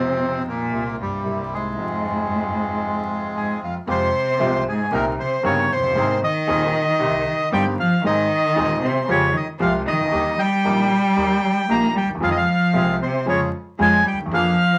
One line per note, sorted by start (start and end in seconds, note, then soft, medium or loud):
0.00 0.67 F2 medium
0.00 0.43 C3 medium
0.00 0.66 D#3 soft
0.00 0.67 F3 medium
0.00 0.67 G#3 soft
0.00 0.67 G#3 medium
0.00 0.43 C4 loud
0.00 0.67 C4 soft
0.00 0.67 D#4 medium
0.00 0.67 F4 medium
0.00 0.68 F4 medium
0.49 0.96 A#2 medium
0.49 0.96 A#3 medium
0.70 1.22 C2 medium
0.70 0.71 C3 medium
0.70 1.21 C3 medium
0.70 1.21 G3 soft
0.70 1.22 A#3 medium
0.70 1.22 A#3 soft
0.70 1.22 C4 medium
0.70 1.22 F4 medium
0.74 1.23 F4 medium
1.00 1.48 G2 medium
1.00 1.54 G3 medium
1.24 1.74 C2 medium
1.24 1.73 C3 medium
1.24 1.74 G3 soft
1.24 1.74 A#3 medium
1.24 1.74 A#3 soft
1.24 1.74 C4 medium
1.24 1.74 E4 medium
1.24 1.75 E4 medium
1.53 3.32 G#2 medium
1.53 3.59 G#3 medium
1.75 3.77 F2 medium
1.75 3.76 C3 soft
1.75 3.77 F3 medium
1.75 3.77 G#3 medium
1.75 3.77 G#3 soft
1.75 3.77 C4 medium
1.75 3.77 F4 medium
1.75 3.78 F4 medium
3.36 3.60 G#2 medium
3.36 3.60 G#4 medium
3.62 3.74 F2 medium
3.62 3.75 F4 medium
3.87 4.09 F2 medium
3.87 4.09 F2 loud
3.87 4.63 C3 medium
3.87 4.10 F3 medium
3.87 4.09 G#3 medium
3.87 4.10 G#3 medium
3.87 4.10 C4 medium
3.87 4.09 F4 medium
3.87 4.10 G4 medium
3.87 4.64 C5 medium
4.39 4.62 C2 medium
4.39 4.62 C3 loud
4.39 4.61 F3 medium
4.39 4.61 G#3 medium
4.39 4.62 G#3 medium
4.39 4.61 C4 medium
4.39 4.62 F4 medium
4.39 4.62 G4 medium
4.67 4.91 G#2 medium
4.67 4.94 G#4 medium
4.91 5.14 C2 medium
4.91 5.04 A#2 medium
4.91 5.14 C3 medium
4.91 5.13 D#3 medium
4.91 5.13 A#3 medium
4.91 5.14 C4 medium
4.91 5.14 D#4 medium
4.91 5.14 G4 medium
4.91 5.14 A#4 medium
4.91 5.05 A#4 medium
5.19 5.43 C3 medium
5.19 5.43 C5 medium
5.43 5.66 G1 medium
5.43 5.66 G1 loud
5.43 5.66 G2 medium
5.43 5.69 C#3 medium
5.43 5.66 D#3 medium
5.43 5.66 A#3 medium
5.43 5.66 C4 medium
5.43 5.66 D#4 medium
5.43 5.66 G4 medium
5.43 5.66 A#4 medium
5.43 5.72 C#5 medium
5.70 6.19 C3 medium
5.70 6.20 C5 loud
5.76 5.83 F1 medium
5.76 5.84 F1 medium
5.83 5.90 F#1 medium
5.83 5.89 F#1 medium
5.88 5.96 G1 medium
5.95 6.18 G#1 medium
5.95 6.19 G#1 loud
5.95 6.18 G#2 medium
5.95 6.18 D#3 medium
5.95 6.18 A#3 medium
5.95 6.18 C4 medium
5.95 6.18 G#4 medium
5.95 6.18 A#4 medium
6.22 7.48 D#3 medium
6.22 7.49 D#5 loud
6.47 6.70 D#1 loud
6.47 6.70 D#2 loud
6.47 6.70 D#3 medium
6.47 6.70 A#3 medium
6.47 6.70 C4 medium
6.47 6.70 G#4 medium
6.47 6.70 A#4 medium
6.99 7.22 C2 medium
6.99 7.23 C2 loud
6.99 7.22 C3 medium
6.99 7.22 D#3 medium
6.99 7.22 G3 medium
6.99 7.22 C4 medium
6.99 7.22 D#4 medium
6.99 7.22 G4 medium
7.51 7.74 G1 medium
7.51 7.74 G1 loud
7.51 7.74 G2 loud
7.51 7.74 D#3 medium
7.51 7.63 G3 medium
7.51 7.74 G3 medium
7.51 7.74 C4 medium
7.51 7.74 D#4 medium
7.51 7.74 G4 medium
7.51 7.65 G5 loud
7.78 8.02 F3 medium
7.78 8.03 F5 medium
8.04 8.26 G#1 medium
8.04 8.27 G#1 loud
8.04 8.26 G#2 medium
8.04 8.78 D#3 medium
8.04 8.26 D#3 medium
8.04 8.26 G#3 medium
8.04 8.26 C4 medium
8.04 8.26 D#4 medium
8.04 8.26 G#4 medium
8.04 8.26 G#4 loud
8.04 8.85 D#5 loud
8.56 8.78 D#1 medium
8.56 8.78 D#2 loud
8.56 8.79 D#2 loud
8.56 8.78 D#3 medium
8.56 8.78 G#3 medium
8.56 8.78 C4 medium
8.56 8.78 D#4 medium
8.56 8.78 G#4 medium
8.80 9.05 C3 medium
8.85 9.10 C5 medium
9.07 9.30 F2 medium
9.07 9.32 C#3 medium
9.07 9.30 F3 medium
9.07 9.30 G#3 medium
9.07 9.30 C4 medium
9.07 9.30 F4 medium
9.07 9.30 G4 medium
9.07 9.36 C#5 loud
9.32 9.44 D#3 medium
9.37 9.48 D#5 medium
9.59 9.82 C2 medium
9.59 9.82 C2 loud
9.59 9.82 C3 medium
9.59 9.71 F3 medium
9.59 9.82 F3 medium
9.59 9.82 G#3 medium
9.59 9.82 C4 medium
9.59 9.82 F4 medium
9.59 9.82 G4 medium
9.59 9.73 F5 loud
9.86 10.34 D#3 medium
9.86 10.40 D#5 loud
9.93 9.99 C2 medium
9.99 10.06 C#2 medium
10.05 10.12 D2 medium
10.11 10.34 D#2 medium
10.11 10.34 D#2 loud
10.11 10.34 D#3 medium
10.11 10.34 G3 medium
10.11 10.34 A#3 medium
10.11 10.34 D#4 medium
10.11 10.34 G4 medium
10.38 11.65 G3 loud
10.38 11.74 G5 loud
10.64 10.86 A#1 medium
10.64 10.87 A#1 medium
10.64 10.87 A#2 medium
10.64 10.86 D#3 medium
10.64 10.86 G3 medium
10.64 10.86 A#3 medium
10.64 10.87 A#3 medium
10.64 10.86 D#4 medium
10.64 10.86 G4 medium
10.64 10.87 G4 medium
11.16 11.38 D#2 medium
11.16 11.39 D#2 medium
11.16 11.39 D#3 medium
11.16 11.39 G3 medium
11.16 11.38 A#3 medium
11.16 11.39 A#3 medium
11.16 11.38 D#4 medium
11.16 11.39 G4 medium
11.68 11.91 A#1 medium
11.68 11.91 A#2 medium
11.68 11.91 D#3 medium
11.68 11.91 G3 medium
11.68 11.91 A#3 medium
11.68 11.94 A#3 medium
11.68 11.91 D#4 medium
11.68 11.91 G4 medium
11.68 11.95 A#5 loud
11.95 12.07 G3 medium
11.95 12.09 G5 medium
12.02 12.08 D2 medium
12.08 12.15 D#2 medium
12.15 12.22 E2 medium
12.20 12.43 F2 medium
12.20 12.44 F2 loud
12.20 12.43 F3 medium
12.20 12.28 F3 medium
12.20 12.43 G#3 medium
12.20 12.43 C4 medium
12.20 12.44 C4 medium
12.20 12.44 F4 medium
12.20 12.43 G#4 medium
12.20 12.44 G#4 medium
12.20 12.29 F5 loud
12.29 12.35 D#3 medium
12.29 12.37 D#5 medium
12.36 12.97 F3 medium
12.36 12.97 F5 loud
12.73 12.96 C2 medium
12.73 12.97 C2 medium
12.73 12.96 C3 medium
12.73 12.96 F3 medium
12.73 12.96 G#3 medium
12.73 12.96 C4 medium
12.73 12.97 C4 medium
12.73 12.97 F4 medium
12.73 12.96 G#4 medium
12.73 12.97 G#4 medium
13.02 13.26 C3 medium
13.02 13.26 C5 medium
13.26 13.48 F2 medium
13.26 13.49 F2 medium
13.26 13.40 C#3 medium
13.26 13.48 F3 medium
13.26 13.48 G#3 medium
13.26 13.49 C#4 medium
13.26 13.49 F4 medium
13.26 13.49 G#4 medium
13.26 13.40 C#5 medium
13.79 14.01 F2 loud
13.79 14.01 F2 medium
13.79 14.01 F3 medium
13.79 14.03 G#3 medium
13.79 14.01 G#3 medium
13.79 14.01 C#4 medium
13.79 14.02 C#4 medium
13.79 14.02 F4 medium
13.79 14.01 G#4 medium
13.79 14.02 G#4 medium
13.79 14.05 G#5 loud
14.04 14.16 G3 medium
14.04 14.19 G5 medium
14.12 14.18 D2 medium
14.12 14.19 D2 medium
14.19 14.25 D#2 medium
14.19 14.26 D#2 medium
14.26 14.32 E2 medium
14.26 14.31 E2 medium
14.31 14.54 F2 loud
14.31 14.54 F2 medium
14.31 14.78 F3 medium
14.31 14.54 F3 medium
14.31 14.54 A#3 medium
14.31 14.54 D4 medium
14.31 14.54 G#4 medium
14.31 14.78 F5 loud